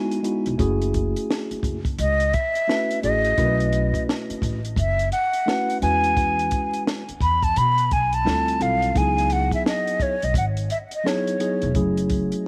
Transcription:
Already playing: G#3 B3 D#4 E4 F#4
0.11 closed hi-hat
0.23 G#3 B3 D#4 E4 F#4, closed hi-hat
0.46 E1, closed hi-hat
0.58 F#1 A3 C#4 E4 F#4 G#4, kick, closed hi-hat
0.82 closed hi-hat
0.94 kick, closed hi-hat
1.16 closed hi-hat
1.30 snare
1.51 muted upright bass stroke, closed hi-hat
1.63 F#1, kick, closed hi-hat
1.85 kick, closed hi-hat
1.99 C#2 D#5, closed hi-hat
2.20 closed hi-hat
2.33 E5, kick, closed hi-hat
2.55 closed hi-hat
2.67 A3 C#4 E4 F#4 B4, snare
2.91 closed hi-hat
3.02 A1 A3 C#4 E4 F#4 G#4 D#5, closed hi-hat
3.25 closed hi-hat
3.37 B1 A3 C#4 E4 F#4 A#4, kick, closed hi-hat
3.46 B4
3.60 closed hi-hat
3.73 closed hi-hat
3.94 kick, closed hi-hat
4.09 snare
4.30 muted upright bass stroke, closed hi-hat
4.42 A1, kick, closed hi-hat
4.65 closed hi-hat
4.76 F#1 E5, kick, closed hi-hat
4.99 closed hi-hat
5.12 F#5, closed hi-hat
5.33 closed hi-hat
5.46 A3 C#4 E4 F#4 B4, snare
5.70 closed hi-hat
5.81 E2 G#3 C#4 E4 F#4 B4 G#5, closed hi-hat
6.04 closed hi-hat
6.17 kick, closed hi-hat
6.39 closed hi-hat
6.51 kick, closed hi-hat
6.73 closed hi-hat
6.87 snare
7.09 muted upright bass stroke, closed hi-hat
7.21 E2 B5, kick, closed hi-hat
7.43 A5, kick, closed hi-hat
7.56 B2 B5, closed hi-hat
7.78 closed hi-hat
7.91 B1 G#5, kick, closed hi-hat
8.13 A5, closed hi-hat
8.25 D2 G3 C4 E4 F4 A4, snare
8.48 closed hi-hat
8.59 B1 G3 C4 E4 F4 A4 F5, closed hi-hat
8.82 closed hi-hat
8.94 C#2 F#3 B3 D#4 E4 G#4 G#5, kick, closed hi-hat
9.18 closed hi-hat
9.30 F#5, closed hi-hat
9.51 E5, kick, closed hi-hat
9.66 D#5, snare
9.87 closed hi-hat
10.00 C#5, kick, closed hi-hat
10.22 B1 D#5, closed hi-hat
10.34 G#1 F#5, kick, closed hi-hat
10.57 closed hi-hat
10.70 E5, closed hi-hat
10.91 D#5, closed hi-hat
11.04 F#3 B3 D#4 E4 G#4 C#5, snare
11.27 closed hi-hat
11.39 F#3 B3 D#4 E4 G#4, closed hi-hat
11.62 E1, closed hi-hat
11.74 F#1 F#3 A3 C#4 E4 G#4, kick, closed hi-hat
11.97 closed hi-hat
12.10 kick, closed hi-hat
12.32 closed hi-hat

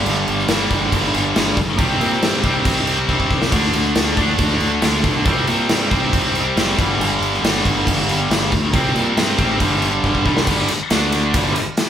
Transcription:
Already playing: G2 D3 G3
0.06 G1, crash
0.28 G1, crash
0.39 snare
0.48 G1 G2 D3 G3, snare, crash
0.71 G1, kick, crash
0.92 G1, kick, crash
1.14 G1 G2 D3 G3, crash
1.36 G1, snare, crash
1.57 F#1, kick, crash
1.78 C2 C3 G3 C4, kick, crash
2.01 A#2, crash
2.13 snare
2.22 G2, snare, crash
2.43 C2 C3 G3 C4, kick, crash
2.65 C2, kick, crash
2.87 crash
3.09 C2 C3 G3 C4, kick
3.20 kick
3.30 C2, kick
3.42 snare
3.52 D2 D3 A3 D4, kick, crash
3.73 D2, crash
3.85 snare
3.95 D2, snare, crash
4.17 D2 D3 A3 D4, kick, crash
4.38 D2, kick, crash
4.60 D2, crash
4.81 D2 D3 A3 D4, snare, crash
5.04 C2, kick, crash
5.25 C2 C3 G3 C4, kick, crash
5.47 A#2, crash
5.59 snare
5.69 G2, snare, crash
5.90 C2 C3 G3 C4, kick, crash
6.13 C2, kick, crash
6.35 crash
6.56 F#1 C3 G3 C4, snare, crash
6.78 G1 G2 D3 G3, kick, crash
6.99 G1, crash
7.21 G1, crash
7.34 snare
7.42 G1 G2 D3 G3, snare, crash
7.65 G1, kick, crash
7.87 G1, kick, crash
8.08 G1 G2 D3 G3, crash
8.30 G1, snare, crash
8.52 D2, kick, crash
8.73 C2 C3 G3 C4, kick, crash
8.96 A#2, crash
9.17 G2, snare, crash
9.38 A1 C3 G3 C4, kick, crash
9.60 G1 G2 D3 G3, kick, crash
9.82 crash
10.04 G1, kick
10.15 kick
10.25 C2 G2 D3 G3, kick
10.37 snare
10.47 G1 G2 D3 G3, kick, crash
10.68 muted fingered electric bass stroke, muted distorted electric guitar stroke, ride
10.90 D2 D3 A3 D4, snare, ride
11.12 ride
11.34 G1 G2 D3 G3, kick, ride
11.56 ride
11.77 snare, ride

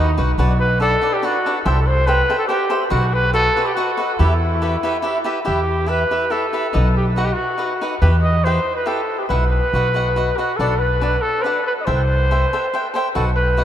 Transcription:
Already playing: D#2 D#4
0.18 B1 F#4 B4 D#5 F#5
0.38 B1 D4 F#4 B4 D5 F#5
0.60 B4
0.80 D4 A4 B4 D5 F#5
1.02 D4 B4 D5 F#5
1.13 G4
1.22 D4 F#4 B4 D5 F#5
1.46 D4 B4 D5 F#5
1.65 C2 A4 C5 E5 G5
1.87 C5
2.07 A4 B4 C5 E5 G5
2.29 A4 C5 E5 G5
2.39 A4
2.47 G4 A4 C5 E5 G5
2.70 A4 C5 E5 G5
2.90 B1 F#4 B4 D#5 F#5
3.14 B4
3.34 F#4 A4 B4 D#5 F#5
3.56 F#4 B4 D#5 F#5
3.65 G4
3.75 F#4 B4 D#5 F#5
3.97 F#4 B4 D#5 F#5
4.19 E2 E4 G4 B4 E5
4.62 E4 G4 B4 E5
4.83 E4 G4 B4 E5
5.02 E4 G4 B4 E5
5.24 E4 G4 B4 E5
5.45 E2 E4 G4 B4 E5
5.86 E4 G4 B4 E5
6.11 E4 G4 B4 E5
6.30 E4 G4 A4 B4 E5
6.53 E4 G4 B4 E5
6.73 B1 D#4 B4 D#5 F#5
6.97 G4
7.16 D#4 F#4 B4 D#5 F#5
7.25 G4
7.33 F#4
7.58 D#4 B4 D#5 F#5
7.81 D#4 B4 D#5 F#5
8.01 E2 E4 G4 B4 G5
8.22 D#5
8.44 E4 G4 B4 C5 G5
8.76 B4
8.86 E4 G4 A4 B4 G5
9.19 G4
9.29 B1 E4 B4 E5 F#5
9.51 B4
9.73 B1 F#4 B4 D#5 F#5
9.94 F#4 B4 D#5 F#5
10.16 F#4 B4 D#5 F#5
10.37 F#4 B4 D#5 F#5
10.57 B1 D4 A4 B4 D5 F#5
10.79 B4
11.01 D4 B4 D5 F#5
11.21 A4
11.40 D4 B4 C5
11.45 B4 D5 F#5
11.67 B4
11.81 D#5
11.85 C2 A4 C5 E5 G5
12.31 A4 C5 E5 G5
12.53 A4 C5 E5 G5
12.74 A4 C5 E5 G5
12.94 A4 C5 E5 G5
13.15 B1 F#4 A4 B4 D#5 F#5
13.36 B4
13.57 F#4 B4 D#5 F#5

